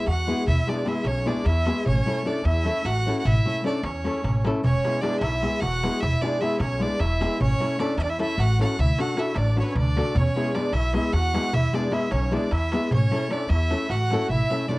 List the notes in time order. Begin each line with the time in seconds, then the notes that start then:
0.06 E2 F#4 F#5, darbuka tek
0.18 darbuka tek
0.27 G#3 B3 E4 G#4
0.47 E2 E4 E5, darbuka dum
0.57 darbuka tek
0.67 G#3 B3 D4 E4 G#4 D5, darbuka tek
0.77 darbuka tek
0.85 G#3 B3 E4 G#4 E5, darbuka tek
1.04 B1 C#4 C#5, darbuka tek
1.15 darbuka tek
1.25 G#3 B3 D4 E4 G#4 D5, darbuka tek
1.35 darbuka tek
1.45 E2 E4 E5, darbuka tek
1.56 darbuka tek
1.66 G#3 B3 E4 G#4, darbuka tek
1.86 A1 C#4 C#5, darbuka dum
1.96 darbuka tek
2.06 A3 C#4 E4 A4, darbuka tek
2.16 darbuka tek
2.25 A3 C#4 D4 E4 A4 D5, darbuka tek
2.44 E2 E4 E5, darbuka tek
2.55 darbuka tek
2.64 A3 C#4 E4 A4, darbuka tek
2.76 darbuka tek
2.85 A1 F#4 F#5, darbuka tek
3.06 A3 C#4 E4 A4
3.18 F#4 F#5
3.25 A1 E4 E5, darbuka dum
3.37 darbuka tek
3.45 A3 C#4 E4 A4
3.64 A3 C#4 D4 E4 A4 D5, darbuka tek
3.75 darbuka tek
3.83 E2 C#4 C#5, darbuka tek
3.96 darbuka tek
4.04 A3 C#4 E4 A4, darbuka tek
4.24 A1, darbuka tek, darbuka dum
4.35 darbuka tek
4.44 A3 C#4 E4 A4, darbuka tek
4.55 darbuka tek
4.64 E1 C#4 C#5, darbuka dum
4.75 darbuka tek
4.84 G#3 B3 E4 G#4, darbuka tek
5.01 G#3 B3 D4 E4 G#4 D5, darbuka tek
5.20 B1 E4 E5, darbuka tek
5.33 darbuka tek
5.42 G#3 B3 E4 G#4, darbuka tek
5.52 darbuka tek
5.61 E1 F#4 F#5, darbuka tek
5.72 darbuka tek
5.83 G#3 B3 E4 G#4, darbuka tek
6.01 E1 E4 E5, darbuka dum
6.13 darbuka tek
6.22 G#3 B3 D4 E4 G#4 D5, darbuka tek
6.33 darbuka tek
6.41 G#3 B3 E4 G#4 E5, darbuka tek
6.60 B1 C#4 C#5, darbuka tek
6.70 darbuka tek
6.79 G#3 B3 D4 E4 G#4 D5, darbuka tek
6.91 darbuka tek
6.99 E1 E4 E5, darbuka tek
7.10 darbuka tek
7.20 G#3 B3 E4 G#4, darbuka tek
7.40 A1 C#4 C#5, darbuka dum
7.51 darbuka tek
7.60 A3 C#4 E4 A4, darbuka tek
7.79 A3 C#4 D4 E4 A4 D5, darbuka tek
7.97 E2 E4 E5, darbuka tek
8.03 D4 D5
8.09 E4 E5, darbuka tek
8.19 A3 C#4 E4 A4 E5, darbuka tek
8.29 darbuka tek
8.38 A1 F#4 F#5, darbuka tek
8.59 A3 C#4 E4 F#4 A4 F#5, darbuka tek
8.79 D2 E4 E5, darbuka dum
8.89 darbuka tek
8.98 A3 D4 F#4 A4 F#5, darbuka tek
9.09 darbuka tek
9.16 A3 D4 E4 F#4 A4 E5, darbuka tek
9.35 A1 D4 D5, darbuka tek
9.56 A3 C#4 D4 F#4 A4 C#5, darbuka tek
9.62 B3 B4
9.66 C#4 C#5, darbuka tek
9.75 D2 D5, darbuka tek, darbuka dum
9.80 D4
9.96 A3 D4 F#4 A4, darbuka tek
10.06 darbuka tek
10.15 E2 C#5, darbuka dum
10.19 C#4
10.26 darbuka tek
10.35 G#3 B3 E4 G#4, darbuka tek
10.45 darbuka tek
10.54 G#3 B3 D4 E4 G#4 D5, darbuka tek
10.73 B1 E4 E5, darbuka tek
10.84 darbuka tek
10.93 G#3 B3 E4 G#4 E5, darbuka tek
11.04 darbuka tek
11.13 E2 F#4 F#5, darbuka tek
11.24 darbuka tek
11.34 G#3 B3 E4 G#4, darbuka tek
11.53 E2 E4 E5, darbuka dum
11.63 darbuka tek
11.73 G#3 B3 D4 E4 G#4 D5, darbuka tek
11.83 darbuka tek
11.91 G#3 B3 E4 G#4 E5, darbuka tek
12.11 B1 C#4 C#5, darbuka tek
12.22 darbuka tek
12.31 G#3 B3 D4 E4 G#4 D5, darbuka tek
12.51 E2 E4 E5, darbuka tek
12.62 darbuka tek
12.72 G#3 B3 E4 G#4, darbuka tek
12.91 A1 C#4 C#5, darbuka dum
13.01 darbuka tek
13.11 A3 C#4 E4 A4, darbuka tek
13.22 darbuka tek
13.30 A3 C#4 D4 E4 A4 D5, darbuka tek
13.49 E2 E4 E5, darbuka tek
13.59 darbuka tek
13.70 A3 C#4 E4 A4, darbuka tek
13.80 darbuka tek
13.89 A1 F#4 F#5, darbuka tek
14.00 darbuka tek
14.10 A3 C#4 E4 A4, darbuka tek
14.29 A1 E4 E5, darbuka dum
14.40 darbuka tek
14.50 A3 C#4 E4 A4, darbuka tek
14.61 darbuka tek
14.69 A3 C#4 D4 E4 A4 D5, darbuka dum